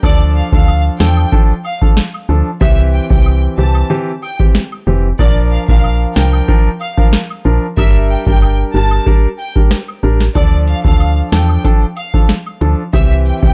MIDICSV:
0, 0, Header, 1, 5, 480
1, 0, Start_track
1, 0, Key_signature, -1, "minor"
1, 0, Tempo, 645161
1, 24, Time_signature, 4, 2, 24, 8
1, 10071, End_track
2, 0, Start_track
2, 0, Title_t, "Violin section"
2, 0, Program_c, 0, 48
2, 26, Note_on_c, 0, 74, 105
2, 136, Note_off_c, 0, 74, 0
2, 265, Note_on_c, 0, 77, 80
2, 375, Note_off_c, 0, 77, 0
2, 393, Note_on_c, 0, 77, 83
2, 601, Note_off_c, 0, 77, 0
2, 745, Note_on_c, 0, 79, 83
2, 954, Note_off_c, 0, 79, 0
2, 1225, Note_on_c, 0, 77, 79
2, 1335, Note_off_c, 0, 77, 0
2, 1944, Note_on_c, 0, 76, 100
2, 2055, Note_off_c, 0, 76, 0
2, 2185, Note_on_c, 0, 79, 78
2, 2296, Note_off_c, 0, 79, 0
2, 2312, Note_on_c, 0, 79, 90
2, 2521, Note_off_c, 0, 79, 0
2, 2665, Note_on_c, 0, 81, 80
2, 2874, Note_off_c, 0, 81, 0
2, 3144, Note_on_c, 0, 79, 81
2, 3255, Note_off_c, 0, 79, 0
2, 3864, Note_on_c, 0, 74, 105
2, 3975, Note_off_c, 0, 74, 0
2, 4103, Note_on_c, 0, 77, 80
2, 4214, Note_off_c, 0, 77, 0
2, 4231, Note_on_c, 0, 77, 84
2, 4440, Note_off_c, 0, 77, 0
2, 4583, Note_on_c, 0, 79, 87
2, 4793, Note_off_c, 0, 79, 0
2, 5064, Note_on_c, 0, 77, 81
2, 5175, Note_off_c, 0, 77, 0
2, 5784, Note_on_c, 0, 76, 102
2, 5895, Note_off_c, 0, 76, 0
2, 6024, Note_on_c, 0, 79, 79
2, 6135, Note_off_c, 0, 79, 0
2, 6152, Note_on_c, 0, 79, 87
2, 6361, Note_off_c, 0, 79, 0
2, 6504, Note_on_c, 0, 81, 81
2, 6713, Note_off_c, 0, 81, 0
2, 6983, Note_on_c, 0, 79, 78
2, 7094, Note_off_c, 0, 79, 0
2, 7704, Note_on_c, 0, 74, 104
2, 7815, Note_off_c, 0, 74, 0
2, 7944, Note_on_c, 0, 77, 80
2, 8055, Note_off_c, 0, 77, 0
2, 8071, Note_on_c, 0, 77, 80
2, 8280, Note_off_c, 0, 77, 0
2, 8425, Note_on_c, 0, 79, 86
2, 8634, Note_off_c, 0, 79, 0
2, 8904, Note_on_c, 0, 77, 78
2, 9015, Note_off_c, 0, 77, 0
2, 9624, Note_on_c, 0, 76, 102
2, 9735, Note_off_c, 0, 76, 0
2, 9864, Note_on_c, 0, 79, 80
2, 9975, Note_off_c, 0, 79, 0
2, 9992, Note_on_c, 0, 79, 89
2, 10071, Note_off_c, 0, 79, 0
2, 10071, End_track
3, 0, Start_track
3, 0, Title_t, "Grand piano"
3, 0, Program_c, 1, 0
3, 22, Note_on_c, 1, 53, 96
3, 25, Note_on_c, 1, 62, 86
3, 27, Note_on_c, 1, 69, 104
3, 360, Note_off_c, 1, 53, 0
3, 361, Note_off_c, 1, 62, 0
3, 362, Note_off_c, 1, 69, 0
3, 389, Note_on_c, 1, 53, 77
3, 391, Note_on_c, 1, 62, 69
3, 393, Note_on_c, 1, 69, 86
3, 716, Note_off_c, 1, 53, 0
3, 717, Note_off_c, 1, 62, 0
3, 718, Note_off_c, 1, 69, 0
3, 742, Note_on_c, 1, 53, 74
3, 744, Note_on_c, 1, 62, 69
3, 746, Note_on_c, 1, 69, 80
3, 965, Note_off_c, 1, 53, 0
3, 966, Note_off_c, 1, 62, 0
3, 967, Note_off_c, 1, 69, 0
3, 982, Note_on_c, 1, 53, 91
3, 984, Note_on_c, 1, 62, 85
3, 987, Note_on_c, 1, 69, 99
3, 1128, Note_off_c, 1, 53, 0
3, 1129, Note_off_c, 1, 62, 0
3, 1131, Note_off_c, 1, 69, 0
3, 1349, Note_on_c, 1, 53, 70
3, 1351, Note_on_c, 1, 62, 67
3, 1354, Note_on_c, 1, 69, 82
3, 1484, Note_off_c, 1, 53, 0
3, 1485, Note_off_c, 1, 62, 0
3, 1486, Note_off_c, 1, 69, 0
3, 1702, Note_on_c, 1, 53, 78
3, 1704, Note_on_c, 1, 62, 70
3, 1707, Note_on_c, 1, 69, 84
3, 1849, Note_off_c, 1, 53, 0
3, 1850, Note_off_c, 1, 62, 0
3, 1851, Note_off_c, 1, 69, 0
3, 1941, Note_on_c, 1, 52, 97
3, 1943, Note_on_c, 1, 60, 85
3, 1945, Note_on_c, 1, 67, 101
3, 2279, Note_off_c, 1, 52, 0
3, 2280, Note_off_c, 1, 60, 0
3, 2281, Note_off_c, 1, 67, 0
3, 2307, Note_on_c, 1, 52, 77
3, 2310, Note_on_c, 1, 60, 69
3, 2312, Note_on_c, 1, 67, 82
3, 2635, Note_off_c, 1, 52, 0
3, 2636, Note_off_c, 1, 60, 0
3, 2637, Note_off_c, 1, 67, 0
3, 2662, Note_on_c, 1, 52, 77
3, 2664, Note_on_c, 1, 60, 70
3, 2667, Note_on_c, 1, 67, 85
3, 2885, Note_off_c, 1, 52, 0
3, 2886, Note_off_c, 1, 60, 0
3, 2887, Note_off_c, 1, 67, 0
3, 2900, Note_on_c, 1, 52, 91
3, 2903, Note_on_c, 1, 60, 83
3, 2905, Note_on_c, 1, 67, 100
3, 3048, Note_off_c, 1, 52, 0
3, 3049, Note_off_c, 1, 60, 0
3, 3050, Note_off_c, 1, 67, 0
3, 3268, Note_on_c, 1, 52, 72
3, 3271, Note_on_c, 1, 60, 69
3, 3273, Note_on_c, 1, 67, 86
3, 3403, Note_off_c, 1, 52, 0
3, 3404, Note_off_c, 1, 60, 0
3, 3405, Note_off_c, 1, 67, 0
3, 3622, Note_on_c, 1, 52, 79
3, 3624, Note_on_c, 1, 60, 71
3, 3626, Note_on_c, 1, 67, 86
3, 3769, Note_off_c, 1, 52, 0
3, 3769, Note_off_c, 1, 60, 0
3, 3771, Note_off_c, 1, 67, 0
3, 3862, Note_on_c, 1, 53, 90
3, 3864, Note_on_c, 1, 62, 85
3, 3866, Note_on_c, 1, 70, 102
3, 4199, Note_off_c, 1, 53, 0
3, 4200, Note_off_c, 1, 62, 0
3, 4202, Note_off_c, 1, 70, 0
3, 4228, Note_on_c, 1, 53, 74
3, 4230, Note_on_c, 1, 62, 73
3, 4233, Note_on_c, 1, 70, 86
3, 4555, Note_off_c, 1, 53, 0
3, 4556, Note_off_c, 1, 62, 0
3, 4558, Note_off_c, 1, 70, 0
3, 4581, Note_on_c, 1, 53, 77
3, 4583, Note_on_c, 1, 62, 70
3, 4586, Note_on_c, 1, 70, 86
3, 4804, Note_off_c, 1, 53, 0
3, 4805, Note_off_c, 1, 62, 0
3, 4807, Note_off_c, 1, 70, 0
3, 4821, Note_on_c, 1, 53, 90
3, 4823, Note_on_c, 1, 62, 83
3, 4825, Note_on_c, 1, 70, 105
3, 4968, Note_off_c, 1, 53, 0
3, 4969, Note_off_c, 1, 62, 0
3, 4970, Note_off_c, 1, 70, 0
3, 5188, Note_on_c, 1, 53, 78
3, 5189, Note_on_c, 1, 62, 67
3, 5191, Note_on_c, 1, 70, 81
3, 5323, Note_off_c, 1, 53, 0
3, 5324, Note_off_c, 1, 62, 0
3, 5325, Note_off_c, 1, 70, 0
3, 5542, Note_on_c, 1, 53, 76
3, 5544, Note_on_c, 1, 62, 69
3, 5546, Note_on_c, 1, 70, 84
3, 5688, Note_off_c, 1, 53, 0
3, 5690, Note_off_c, 1, 62, 0
3, 5690, Note_off_c, 1, 70, 0
3, 5781, Note_on_c, 1, 55, 97
3, 5783, Note_on_c, 1, 62, 84
3, 5786, Note_on_c, 1, 70, 107
3, 6119, Note_off_c, 1, 55, 0
3, 6120, Note_off_c, 1, 62, 0
3, 6122, Note_off_c, 1, 70, 0
3, 6149, Note_on_c, 1, 55, 74
3, 6151, Note_on_c, 1, 62, 72
3, 6154, Note_on_c, 1, 70, 87
3, 6476, Note_off_c, 1, 55, 0
3, 6477, Note_off_c, 1, 62, 0
3, 6478, Note_off_c, 1, 70, 0
3, 6503, Note_on_c, 1, 55, 76
3, 6506, Note_on_c, 1, 62, 69
3, 6508, Note_on_c, 1, 70, 79
3, 6725, Note_off_c, 1, 55, 0
3, 6727, Note_off_c, 1, 62, 0
3, 6728, Note_off_c, 1, 70, 0
3, 6742, Note_on_c, 1, 55, 89
3, 6744, Note_on_c, 1, 62, 82
3, 6747, Note_on_c, 1, 70, 101
3, 6888, Note_off_c, 1, 55, 0
3, 6890, Note_off_c, 1, 62, 0
3, 6891, Note_off_c, 1, 70, 0
3, 7109, Note_on_c, 1, 55, 73
3, 7111, Note_on_c, 1, 62, 69
3, 7113, Note_on_c, 1, 70, 76
3, 7243, Note_off_c, 1, 55, 0
3, 7244, Note_off_c, 1, 62, 0
3, 7246, Note_off_c, 1, 70, 0
3, 7462, Note_on_c, 1, 55, 75
3, 7464, Note_on_c, 1, 62, 72
3, 7466, Note_on_c, 1, 70, 83
3, 7608, Note_off_c, 1, 55, 0
3, 7609, Note_off_c, 1, 62, 0
3, 7611, Note_off_c, 1, 70, 0
3, 7701, Note_on_c, 1, 53, 91
3, 7704, Note_on_c, 1, 62, 84
3, 7706, Note_on_c, 1, 69, 103
3, 8039, Note_off_c, 1, 53, 0
3, 8040, Note_off_c, 1, 62, 0
3, 8041, Note_off_c, 1, 69, 0
3, 8067, Note_on_c, 1, 53, 77
3, 8070, Note_on_c, 1, 62, 70
3, 8071, Note_on_c, 1, 69, 83
3, 8395, Note_off_c, 1, 53, 0
3, 8396, Note_off_c, 1, 62, 0
3, 8397, Note_off_c, 1, 69, 0
3, 8421, Note_on_c, 1, 53, 74
3, 8423, Note_on_c, 1, 62, 71
3, 8425, Note_on_c, 1, 69, 82
3, 8644, Note_off_c, 1, 53, 0
3, 8645, Note_off_c, 1, 62, 0
3, 8646, Note_off_c, 1, 69, 0
3, 8661, Note_on_c, 1, 53, 87
3, 8664, Note_on_c, 1, 62, 83
3, 8666, Note_on_c, 1, 69, 101
3, 8808, Note_off_c, 1, 53, 0
3, 8809, Note_off_c, 1, 62, 0
3, 8810, Note_off_c, 1, 69, 0
3, 9029, Note_on_c, 1, 53, 73
3, 9032, Note_on_c, 1, 62, 67
3, 9034, Note_on_c, 1, 69, 81
3, 9164, Note_off_c, 1, 53, 0
3, 9165, Note_off_c, 1, 62, 0
3, 9166, Note_off_c, 1, 69, 0
3, 9382, Note_on_c, 1, 53, 78
3, 9384, Note_on_c, 1, 62, 71
3, 9386, Note_on_c, 1, 69, 83
3, 9528, Note_off_c, 1, 53, 0
3, 9530, Note_off_c, 1, 62, 0
3, 9531, Note_off_c, 1, 69, 0
3, 9622, Note_on_c, 1, 52, 93
3, 9624, Note_on_c, 1, 60, 82
3, 9626, Note_on_c, 1, 67, 105
3, 9959, Note_off_c, 1, 52, 0
3, 9961, Note_off_c, 1, 60, 0
3, 9962, Note_off_c, 1, 67, 0
3, 9988, Note_on_c, 1, 52, 79
3, 9991, Note_on_c, 1, 60, 68
3, 9992, Note_on_c, 1, 67, 86
3, 10071, Note_off_c, 1, 52, 0
3, 10071, Note_off_c, 1, 60, 0
3, 10071, Note_off_c, 1, 67, 0
3, 10071, End_track
4, 0, Start_track
4, 0, Title_t, "FM bass"
4, 0, Program_c, 2, 39
4, 24, Note_on_c, 2, 38, 106
4, 312, Note_off_c, 2, 38, 0
4, 391, Note_on_c, 2, 38, 97
4, 668, Note_off_c, 2, 38, 0
4, 745, Note_on_c, 2, 40, 92
4, 933, Note_off_c, 2, 40, 0
4, 1703, Note_on_c, 2, 38, 95
4, 1803, Note_off_c, 2, 38, 0
4, 1944, Note_on_c, 2, 36, 109
4, 2232, Note_off_c, 2, 36, 0
4, 2311, Note_on_c, 2, 36, 100
4, 2588, Note_off_c, 2, 36, 0
4, 2663, Note_on_c, 2, 36, 100
4, 2852, Note_off_c, 2, 36, 0
4, 3623, Note_on_c, 2, 29, 94
4, 3812, Note_off_c, 2, 29, 0
4, 3863, Note_on_c, 2, 34, 108
4, 4152, Note_off_c, 2, 34, 0
4, 4230, Note_on_c, 2, 34, 87
4, 4508, Note_off_c, 2, 34, 0
4, 4585, Note_on_c, 2, 36, 97
4, 4773, Note_off_c, 2, 36, 0
4, 5545, Note_on_c, 2, 34, 91
4, 5644, Note_off_c, 2, 34, 0
4, 5784, Note_on_c, 2, 31, 111
4, 6072, Note_off_c, 2, 31, 0
4, 6150, Note_on_c, 2, 31, 101
4, 6428, Note_off_c, 2, 31, 0
4, 6504, Note_on_c, 2, 31, 99
4, 6692, Note_off_c, 2, 31, 0
4, 7464, Note_on_c, 2, 33, 94
4, 7652, Note_off_c, 2, 33, 0
4, 7704, Note_on_c, 2, 38, 108
4, 7992, Note_off_c, 2, 38, 0
4, 8071, Note_on_c, 2, 38, 96
4, 8348, Note_off_c, 2, 38, 0
4, 8425, Note_on_c, 2, 40, 93
4, 8613, Note_off_c, 2, 40, 0
4, 9385, Note_on_c, 2, 38, 96
4, 9484, Note_off_c, 2, 38, 0
4, 9624, Note_on_c, 2, 36, 110
4, 9913, Note_off_c, 2, 36, 0
4, 9991, Note_on_c, 2, 36, 96
4, 10071, Note_off_c, 2, 36, 0
4, 10071, End_track
5, 0, Start_track
5, 0, Title_t, "Drums"
5, 24, Note_on_c, 9, 36, 114
5, 26, Note_on_c, 9, 76, 73
5, 98, Note_off_c, 9, 36, 0
5, 101, Note_off_c, 9, 76, 0
5, 265, Note_on_c, 9, 69, 80
5, 340, Note_off_c, 9, 69, 0
5, 391, Note_on_c, 9, 36, 97
5, 465, Note_off_c, 9, 36, 0
5, 505, Note_on_c, 9, 76, 71
5, 580, Note_off_c, 9, 76, 0
5, 745, Note_on_c, 9, 69, 73
5, 746, Note_on_c, 9, 38, 106
5, 819, Note_off_c, 9, 69, 0
5, 820, Note_off_c, 9, 38, 0
5, 869, Note_on_c, 9, 76, 77
5, 943, Note_off_c, 9, 76, 0
5, 986, Note_on_c, 9, 36, 99
5, 1060, Note_off_c, 9, 36, 0
5, 1224, Note_on_c, 9, 69, 67
5, 1224, Note_on_c, 9, 76, 66
5, 1298, Note_off_c, 9, 69, 0
5, 1298, Note_off_c, 9, 76, 0
5, 1352, Note_on_c, 9, 36, 93
5, 1426, Note_off_c, 9, 36, 0
5, 1464, Note_on_c, 9, 38, 107
5, 1539, Note_off_c, 9, 38, 0
5, 1593, Note_on_c, 9, 76, 69
5, 1668, Note_off_c, 9, 76, 0
5, 1703, Note_on_c, 9, 69, 73
5, 1778, Note_off_c, 9, 69, 0
5, 1944, Note_on_c, 9, 36, 110
5, 1946, Note_on_c, 9, 76, 75
5, 2019, Note_off_c, 9, 36, 0
5, 2020, Note_off_c, 9, 76, 0
5, 2186, Note_on_c, 9, 69, 81
5, 2260, Note_off_c, 9, 69, 0
5, 2311, Note_on_c, 9, 36, 101
5, 2385, Note_off_c, 9, 36, 0
5, 2425, Note_on_c, 9, 76, 73
5, 2499, Note_off_c, 9, 76, 0
5, 2664, Note_on_c, 9, 69, 71
5, 2739, Note_off_c, 9, 69, 0
5, 2788, Note_on_c, 9, 76, 80
5, 2862, Note_off_c, 9, 76, 0
5, 3143, Note_on_c, 9, 69, 68
5, 3143, Note_on_c, 9, 76, 67
5, 3218, Note_off_c, 9, 69, 0
5, 3218, Note_off_c, 9, 76, 0
5, 3271, Note_on_c, 9, 36, 93
5, 3346, Note_off_c, 9, 36, 0
5, 3384, Note_on_c, 9, 38, 108
5, 3458, Note_off_c, 9, 38, 0
5, 3513, Note_on_c, 9, 76, 70
5, 3587, Note_off_c, 9, 76, 0
5, 3623, Note_on_c, 9, 69, 75
5, 3697, Note_off_c, 9, 69, 0
5, 3864, Note_on_c, 9, 36, 117
5, 3865, Note_on_c, 9, 76, 74
5, 3938, Note_off_c, 9, 36, 0
5, 3940, Note_off_c, 9, 76, 0
5, 4105, Note_on_c, 9, 69, 77
5, 4180, Note_off_c, 9, 69, 0
5, 4230, Note_on_c, 9, 36, 100
5, 4305, Note_off_c, 9, 36, 0
5, 4344, Note_on_c, 9, 76, 74
5, 4419, Note_off_c, 9, 76, 0
5, 4584, Note_on_c, 9, 69, 73
5, 4585, Note_on_c, 9, 38, 106
5, 4659, Note_off_c, 9, 38, 0
5, 4659, Note_off_c, 9, 69, 0
5, 4708, Note_on_c, 9, 76, 74
5, 4782, Note_off_c, 9, 76, 0
5, 4825, Note_on_c, 9, 36, 97
5, 4900, Note_off_c, 9, 36, 0
5, 5064, Note_on_c, 9, 69, 70
5, 5064, Note_on_c, 9, 76, 68
5, 5138, Note_off_c, 9, 69, 0
5, 5138, Note_off_c, 9, 76, 0
5, 5191, Note_on_c, 9, 36, 92
5, 5266, Note_off_c, 9, 36, 0
5, 5303, Note_on_c, 9, 38, 113
5, 5378, Note_off_c, 9, 38, 0
5, 5433, Note_on_c, 9, 76, 69
5, 5508, Note_off_c, 9, 76, 0
5, 5544, Note_on_c, 9, 69, 73
5, 5619, Note_off_c, 9, 69, 0
5, 5784, Note_on_c, 9, 36, 112
5, 5786, Note_on_c, 9, 76, 72
5, 5858, Note_off_c, 9, 36, 0
5, 5861, Note_off_c, 9, 76, 0
5, 6026, Note_on_c, 9, 69, 80
5, 6100, Note_off_c, 9, 69, 0
5, 6151, Note_on_c, 9, 36, 97
5, 6225, Note_off_c, 9, 36, 0
5, 6265, Note_on_c, 9, 76, 71
5, 6340, Note_off_c, 9, 76, 0
5, 6505, Note_on_c, 9, 69, 71
5, 6579, Note_off_c, 9, 69, 0
5, 6628, Note_on_c, 9, 76, 79
5, 6703, Note_off_c, 9, 76, 0
5, 6745, Note_on_c, 9, 36, 97
5, 6819, Note_off_c, 9, 36, 0
5, 6984, Note_on_c, 9, 69, 67
5, 7058, Note_off_c, 9, 69, 0
5, 7111, Note_on_c, 9, 36, 90
5, 7185, Note_off_c, 9, 36, 0
5, 7224, Note_on_c, 9, 37, 86
5, 7224, Note_on_c, 9, 38, 106
5, 7298, Note_off_c, 9, 37, 0
5, 7298, Note_off_c, 9, 38, 0
5, 7353, Note_on_c, 9, 76, 72
5, 7427, Note_off_c, 9, 76, 0
5, 7463, Note_on_c, 9, 69, 72
5, 7538, Note_off_c, 9, 69, 0
5, 7592, Note_on_c, 9, 38, 69
5, 7666, Note_off_c, 9, 38, 0
5, 7704, Note_on_c, 9, 36, 115
5, 7704, Note_on_c, 9, 42, 76
5, 7705, Note_on_c, 9, 76, 74
5, 7778, Note_off_c, 9, 36, 0
5, 7779, Note_off_c, 9, 42, 0
5, 7780, Note_off_c, 9, 76, 0
5, 7943, Note_on_c, 9, 42, 54
5, 7944, Note_on_c, 9, 69, 77
5, 8017, Note_off_c, 9, 42, 0
5, 8019, Note_off_c, 9, 69, 0
5, 8071, Note_on_c, 9, 36, 98
5, 8145, Note_off_c, 9, 36, 0
5, 8184, Note_on_c, 9, 76, 70
5, 8185, Note_on_c, 9, 42, 76
5, 8258, Note_off_c, 9, 76, 0
5, 8259, Note_off_c, 9, 42, 0
5, 8423, Note_on_c, 9, 69, 72
5, 8425, Note_on_c, 9, 38, 109
5, 8425, Note_on_c, 9, 42, 55
5, 8498, Note_off_c, 9, 69, 0
5, 8499, Note_off_c, 9, 42, 0
5, 8500, Note_off_c, 9, 38, 0
5, 8547, Note_on_c, 9, 76, 76
5, 8622, Note_off_c, 9, 76, 0
5, 8665, Note_on_c, 9, 36, 95
5, 8666, Note_on_c, 9, 42, 78
5, 8739, Note_off_c, 9, 36, 0
5, 8740, Note_off_c, 9, 42, 0
5, 8902, Note_on_c, 9, 69, 70
5, 8902, Note_on_c, 9, 76, 68
5, 8903, Note_on_c, 9, 42, 53
5, 8977, Note_off_c, 9, 69, 0
5, 8977, Note_off_c, 9, 76, 0
5, 8978, Note_off_c, 9, 42, 0
5, 9031, Note_on_c, 9, 36, 89
5, 9106, Note_off_c, 9, 36, 0
5, 9144, Note_on_c, 9, 38, 106
5, 9145, Note_on_c, 9, 42, 73
5, 9219, Note_off_c, 9, 38, 0
5, 9220, Note_off_c, 9, 42, 0
5, 9273, Note_on_c, 9, 76, 69
5, 9348, Note_off_c, 9, 76, 0
5, 9383, Note_on_c, 9, 69, 72
5, 9385, Note_on_c, 9, 42, 56
5, 9458, Note_off_c, 9, 69, 0
5, 9459, Note_off_c, 9, 42, 0
5, 9624, Note_on_c, 9, 36, 109
5, 9625, Note_on_c, 9, 42, 75
5, 9626, Note_on_c, 9, 76, 71
5, 9699, Note_off_c, 9, 36, 0
5, 9699, Note_off_c, 9, 42, 0
5, 9700, Note_off_c, 9, 76, 0
5, 9863, Note_on_c, 9, 42, 51
5, 9865, Note_on_c, 9, 69, 79
5, 9937, Note_off_c, 9, 42, 0
5, 9939, Note_off_c, 9, 69, 0
5, 9991, Note_on_c, 9, 36, 102
5, 10065, Note_off_c, 9, 36, 0
5, 10071, End_track
0, 0, End_of_file